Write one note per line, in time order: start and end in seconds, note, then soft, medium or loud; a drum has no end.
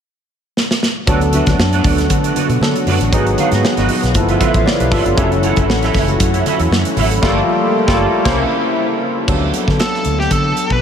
0.57 snare medium
0.71 snare medium
0.83 snare medium
1.06 1.40 D2 loud
1.06 3.10 D3 medium
1.06 2.58 F#3 medium
1.06 3.10 A3 medium
1.06 5.13 B3 medium
1.06 2.58 B3 medium
1.06 1.28 D4 medium
1.06 2.58 D4 medium
1.06 4.11 F#4 medium
1.06 1.21 F#4 medium
1.06 2.59 A4 medium
1.06 1.21 B4 medium
1.06 1.20 D5 medium
1.06 kick loud
1.06 closed hi-hat medium
1.06 muted conga soft
1.06 low conga medium
1.21 muted clean electric guitar stroke soft
1.21 closed hi-hat soft
1.33 1.47 D4 medium
1.33 1.47 F#4 medium
1.33 1.46 B4 medium
1.33 1.46 E5 medium
1.33 closed hi-hat medium
1.33 muted conga soft
1.33 high conga medium
1.46 1.57 D2 medium
1.46 1.58 D4 soft
1.46 1.59 F#4 soft
1.46 1.59 B4 medium
1.46 1.59 D5 medium
1.46 kick medium
1.46 snare soft
1.46 closed hi-hat soft
1.46 high conga medium
1.58 1.80 F#2 medium
1.58 muted clean electric guitar stroke soft
1.58 snare loud
1.58 muted conga soft
1.73 1.83 D4 medium
1.73 1.83 F#4 medium
1.73 1.84 B4 medium
1.73 1.84 D5 medium
1.73 closed hi-hat soft
1.84 2.06 D2 medium
1.84 2.02 D4 medium
1.84 1.98 F#4 medium
1.84 1.97 B4 medium
1.84 1.96 D5 medium
1.84 kick medium
1.84 open hi-hat medium
1.84 low conga medium
1.98 muted clean electric guitar stroke soft
1.98 snare soft
1.98 closed hi-hat soft
1.98 high conga soft
2.10 2.31 D3 loud
2.10 muted clean electric guitar stroke soft
2.10 kick medium
2.10 closed hi-hat medium
2.24 2.34 D4 soft
2.24 2.34 F#4 soft
2.24 2.35 B4 medium
2.24 2.35 D5 medium
2.24 closed hi-hat medium
2.35 2.56 D4 medium
2.35 2.49 F#4 medium
2.35 2.49 B4 medium
2.35 2.48 D5 medium
2.35 closed hi-hat medium
2.35 high conga medium
2.49 2.59 B2 medium
2.49 muted clean electric guitar stroke soft
2.49 closed hi-hat soft
2.61 2.72 D3 loud
2.61 3.11 F#3 soft
2.61 3.11 B3 soft
2.61 3.13 D4 soft
2.61 3.13 A4 medium
2.61 muted clean electric guitar stroke soft
2.61 snare medium
2.61 high conga medium
2.75 muted clean electric guitar stroke soft
2.75 closed hi-hat soft
2.86 2.98 F#2 medium
2.86 3.08 D4 medium
2.86 3.01 F#4 medium
2.86 3.00 B4 medium
2.86 3.00 D5 medium
2.86 open hi-hat medium
2.86 high conga medium
2.86 low conga medium
3.00 3.10 A1 medium
3.00 muted clean electric guitar stroke soft
3.00 closed hi-hat medium
3.12 3.34 G#1 medium
3.12 4.14 D#3 medium
3.12 4.13 F#3 medium
3.12 4.14 G#3 medium
3.12 4.13 B3 medium
3.12 3.33 D#4 medium
3.12 4.14 D#4 medium
3.12 3.26 F#4 medium
3.12 4.14 G#4 medium
3.12 3.26 B4 medium
3.12 3.25 D#5 medium
3.12 kick loud
3.12 closed hi-hat medium
3.12 low conga medium
3.27 muted clean electric guitar stroke soft
3.27 closed hi-hat soft
3.38 3.52 D#4 medium
3.38 3.52 F#4 medium
3.38 3.51 B4 medium
3.38 3.51 F5 medium
3.38 closed hi-hat medium
3.38 muted conga soft
3.38 high conga medium
3.51 3.62 G#2 loud
3.51 3.63 D#4 medium
3.51 3.63 F#4 medium
3.51 3.64 B4 soft
3.51 3.64 D#5 medium
3.51 snare soft
3.51 closed hi-hat soft
3.51 high conga medium
3.64 muted clean electric guitar stroke soft
3.64 snare loud
3.64 muted conga soft
3.77 3.87 G#1 medium
3.77 3.88 D#4 medium
3.77 3.89 F#4 medium
3.77 3.89 B4 medium
3.77 3.90 D#5 medium
3.77 snare soft
3.77 closed hi-hat soft
3.89 4.07 D#4 medium
3.89 4.03 F#4 medium
3.89 4.02 B4 medium
3.89 4.02 D#5 medium
3.89 open hi-hat medium
3.89 low conga medium
4.03 4.13 B1 medium
4.03 muted clean electric guitar stroke soft
4.03 snare soft
4.03 closed hi-hat soft
4.03 high conga soft
4.14 4.36 G1 loud
4.14 5.15 F3 medium
4.14 8.22 A3 medium
4.14 4.22 A#3 soft
4.14 5.16 E4 medium
4.14 4.41 E4 medium
4.14 5.17 F4 medium
4.14 4.41 A4 medium
4.14 muted clean electric guitar stroke soft
4.14 kick medium
4.14 closed hi-hat medium
4.14 muted conga soft
4.21 5.19 B3 medium
4.29 4.39 F4 medium
4.29 4.39 A4 medium
4.29 4.40 B4 medium
4.29 4.40 E5 medium
4.29 closed hi-hat soft
4.40 4.61 F4 medium
4.40 4.54 A4 medium
4.40 4.54 B4 medium
4.40 4.53 E5 medium
4.40 kick medium
4.40 closed hi-hat medium
4.40 muted conga soft
4.40 high conga medium
4.54 4.64 A1 medium
4.54 4.66 C#5 medium
4.54 4.66 E5 medium
4.54 muted clean electric guitar stroke soft
4.54 kick loud
4.54 closed hi-hat soft
4.66 4.79 B4 medium
4.66 4.79 D5 medium
4.66 muted clean electric guitar stroke soft
4.66 snare medium
4.66 high conga medium
4.80 4.90 B1 medium
4.80 4.92 G4 medium
4.80 4.91 B4 medium
4.80 muted clean electric guitar stroke soft
4.80 closed hi-hat soft
4.91 5.13 F4 medium
4.91 5.03 F4 medium
4.91 5.05 A4 medium
4.91 5.05 B4 medium
4.91 5.05 E5 medium
4.91 kick loud
4.91 open hi-hat medium
4.91 high conga medium
4.91 low conga medium
5.05 5.15 G1 medium
5.05 5.30 D4 medium
5.05 5.30 F4 medium
5.05 muted clean electric guitar stroke soft
5.05 closed hi-hat medium
5.15 5.50 F#1 loud
5.15 7.21 E3 medium
5.15 7.18 F#3 medium
5.15 7.18 C#4 medium
5.15 7.21 C#4 medium
5.15 7.18 E4 medium
5.15 5.38 E4 medium
5.15 7.21 F#4 loud
5.15 5.24 G4 medium
5.15 5.31 A4 medium
5.15 5.31 C#5 medium
5.15 5.31 E5 medium
5.15 kick loud
5.15 closed hi-hat medium
5.15 muted conga soft
5.15 low conga medium
5.24 7.22 A4 medium
5.32 muted clean electric guitar stroke soft
5.32 closed hi-hat soft
5.43 5.57 E4 medium
5.43 5.57 A4 medium
5.43 5.57 C#5 medium
5.43 5.57 F#5 medium
5.43 closed hi-hat medium
5.43 muted conga soft
5.43 high conga medium
5.56 5.68 F#1 medium
5.56 5.68 E4 medium
5.56 5.68 A4 medium
5.56 5.68 C#5 medium
5.56 5.68 E5 medium
5.56 kick medium
5.56 closed hi-hat soft
5.56 high conga medium
5.68 5.90 A1 medium
5.68 muted clean electric guitar stroke soft
5.68 snare loud
5.82 5.93 E4 medium
5.82 5.94 A4 medium
5.82 5.94 C#5 medium
5.82 5.95 E5 medium
5.82 snare soft
5.82 closed hi-hat soft
5.93 6.16 F#1 medium
5.93 6.12 E4 medium
5.93 6.08 A4 medium
5.93 6.08 C#5 medium
5.93 6.07 E5 medium
5.93 kick medium
5.93 snare soft
5.93 open hi-hat medium
5.93 muted conga soft
5.93 low conga medium
6.08 muted clean electric guitar stroke soft
6.08 closed hi-hat soft
6.08 high conga soft
6.20 6.41 F#2 loud
6.20 muted clean electric guitar stroke soft
6.20 kick loud
6.20 closed hi-hat loud
6.34 6.45 E4 soft
6.34 6.45 A4 soft
6.34 6.46 C#5 medium
6.34 6.46 E5 medium
6.34 closed hi-hat medium
6.46 6.67 E4 medium
6.46 6.60 A4 medium
6.46 6.59 C#5 medium
6.46 6.59 E5 medium
6.46 closed hi-hat medium
6.46 muted conga soft
6.46 high conga medium
6.59 6.69 E2 medium
6.59 muted clean electric guitar stroke soft
6.59 closed hi-hat soft
6.71 6.83 F#2 loud
6.71 muted clean electric guitar stroke soft
6.71 snare medium
6.71 high conga medium
6.85 muted clean electric guitar stroke soft
6.85 closed hi-hat medium
6.97 7.11 A1 medium
6.97 7.18 E4 medium
6.97 7.11 A4 medium
6.97 7.10 C#5 medium
6.97 7.10 E5 loud
6.97 open hi-hat medium
6.97 muted conga soft
6.97 high conga medium
6.97 low conga medium
7.11 7.22 G#1 medium
7.11 muted clean electric guitar stroke soft
7.11 closed hi-hat medium
7.22 7.41 G1 medium
7.22 8.25 F3 medium
7.22 7.40 G3 loud
7.22 7.40 A3 loud
7.22 7.41 A#3 medium
7.22 8.24 A#3 medium
7.22 7.41 F4 loud
7.22 7.41 F4 medium
7.22 8.25 G4 medium
7.22 7.41 A4 medium
7.22 7.41 A4 loud
7.22 7.41 D5 loud
7.22 kick loud
7.22 snare medium
7.22 crash medium
7.29 7.44 A#3 loud
7.87 8.05 G1 loud
7.87 8.04 G3 medium
7.87 8.05 A3 medium
7.87 8.06 A#3 medium
7.87 8.05 F4 loud
7.87 8.06 F4 loud
7.87 8.05 A4 loud
7.87 8.06 A4 medium
7.87 8.05 D5 loud
7.87 kick loud
7.87 snare medium
7.93 8.08 A#3 medium
8.24 8.43 C2 loud
8.24 9.27 C#3 medium
8.24 8.43 A#3 medium
8.24 9.27 A#3 medium
8.24 8.44 A#3 medium
8.24 9.27 C4 medium
8.24 8.43 C#4 medium
8.24 9.27 E4 medium
8.24 8.44 E4 medium
8.24 8.43 G4 medium
8.24 8.44 C5 medium
8.24 8.43 C#5 medium
8.24 kick loud
8.24 snare loud
8.24 crash medium
8.32 8.47 E4 medium
9.27 9.49 D2 medium
9.27 10.82 F#3 medium
9.27 10.82 B3 medium
9.27 10.82 D4 medium
9.27 10.82 A4 medium
9.27 kick loud
9.27 crash medium
9.54 closed hi-hat medium
9.68 9.78 D3 medium
9.68 kick medium
9.68 snare soft
9.80 10.19 A4 medium
9.80 snare loud
9.80 closed hi-hat medium
9.94 snare soft
10.05 10.27 D2 medium
10.05 closed hi-hat medium
10.20 10.32 G4 medium
10.20 snare soft
10.31 10.52 D3 loud
10.31 10.72 A4 medium
10.31 kick medium
10.31 closed hi-hat medium
10.57 closed hi-hat medium
10.70 10.80 B2 medium
10.70 10.82 B4 medium
10.70 kick medium